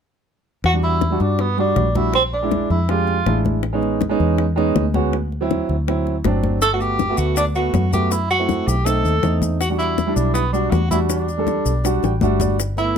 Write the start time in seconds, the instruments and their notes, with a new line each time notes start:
0.64 fingered electric bass E2, tenor saxophone F#4, high bongo, high conga
0.73 grand piano G3 D4 F#4
0.83 tenor saxophone E4, high bongo, high conga
1.01 high bongo, high conga
1.10 grand piano G3 D4 F#4
1.20 fingered electric bass G2, tenor saxophone D4, high bongo, high conga
1.39 tenor saxophone B3, high bongo, high conga
1.57 grand piano G3 D4 F#4, tenor saxophone D4, high conga
1.76 fingered electric bass A#1, high bongo, low bongo, high conga
1.95 grand piano G3 D4 F#4, tenor saxophone E4, high bongo, high conga
2.14 tenor saxophone C4, high bongo, high conga
2.33 tenor saxophone D4, high conga
2.42 grand piano G#3 D4 E4
2.51 high bongo, high conga
2.70 fingered electric bass F2, tenor saxophone E4, high bongo, high conga
2.89 grand piano G#3 D4 G4, tenor saxophone F4, high bongo, high conga
3.07 high bongo, high conga
3.26 fingered electric bass A1, grand piano G#3 D4 E4, high bongo, low bongo, high conga
3.45 high bongo, high conga
3.63 high bongo, high conga
3.73 grand piano G#3 B3 C#4 D#4
3.82 high bongo, high conga
4.01 high bongo, high conga
4.09 grand piano G#3 B3 C#4 D#4
4.20 fingered electric bass E2, high bongo, high conga
4.38 high bongo, high conga
4.56 grand piano G#3 B3 C#4 D#4, high conga
4.76 fingered electric bass D2, high bongo, low bongo, high conga
4.94 grand piano G#3 B3 C#4 F#4, high bongo, high conga
5.13 high bongo, high conga
5.32 high conga
5.41 grand piano F#3 C4 E4
5.51 high bongo, high conga
5.69 fingered electric bass D2, high bongo, high conga
5.88 grand piano F#3 C4 E4, high bongo, high conga
6.07 high bongo, high conga
6.24 fingered electric bass G1, grand piano F#3 C4 D4, high bongo, low bongo, high conga
6.43 high bongo, high conga
6.62 tenor saxophone A4, high bongo, high conga, maracas
6.72 grand piano A3 B3 F#4, tenor saxophone F#4
6.80 tenor saxophone G4, high bongo, high conga, maracas
6.99 high bongo, high conga, maracas
7.09 grand piano A3 B3 F#4
7.17 fingered electric bass D2, tenor saxophone F#4, high bongo, high conga, maracas
7.37 tenor saxophone D4, high bongo, high conga, maracas
7.55 grand piano A3 B3 F#4, tenor saxophone F#4, high conga, maracas
7.73 fingered electric bass F#2, high bongo, low bongo, high conga, maracas
7.92 grand piano A3 B3 F#4, tenor saxophone G4, high bongo, high conga, maracas
8.11 tenor saxophone E4, high bongo, high conga, maracas
8.30 tenor saxophone F#4, high conga, maracas
8.38 grand piano A3 C4 E4
8.49 high bongo, high conga, maracas
8.67 fingered electric bass B1, tenor saxophone G4, high bongo, high conga, maracas
8.85 grand piano A3 C4 D#4, tenor saxophone A4, high bongo, high conga, maracas
9.04 fingered electric bass D#2, high bongo, high conga, maracas
9.22 fingered electric bass E2, grand piano A3 C4 D#4, high bongo, low bongo, high conga, maracas
9.42 high bongo, high conga, maracas
9.60 tenor saxophone F#4, high bongo, high conga, maracas
9.70 grand piano G3 D4 F#4
9.79 tenor saxophone E4, high bongo, high conga, maracas
9.98 high bongo, high conga, maracas
10.06 grand piano G3 D4 E4
10.16 fingered electric bass B1, tenor saxophone D4, high bongo, high conga, maracas
10.34 tenor saxophone B3, high bongo, high conga, maracas
10.53 grand piano G3 D4 F#4, tenor saxophone D4, high conga, maracas
10.71 fingered electric bass E2, tenor saxophone F#4, high bongo, low bongo, high conga, maracas
10.91 grand piano G3 D4 F#4, tenor saxophone E4, high bongo, high conga, maracas
11.10 tenor saxophone D4, high bongo, high conga, maracas
11.28 high conga, maracas
11.38 grand piano G3 D4 A4
11.47 high bongo, high conga, maracas
11.65 fingered electric bass B1, high bongo, high conga, maracas
11.84 grand piano G3 D4 F#4, high bongo, high conga, maracas
12.03 fingered electric bass A1, grand piano G5, high bongo, high conga, maracas
12.21 fingered electric bass G1, grand piano G3 D4 F#4 E5, high conga, maracas
12.40 grand piano D5, low bongo, high conga, maracas
12.59 high bongo, high conga, maracas
12.77 grand piano A3 B3 E4, tenor saxophone E4, high bongo, high conga, maracas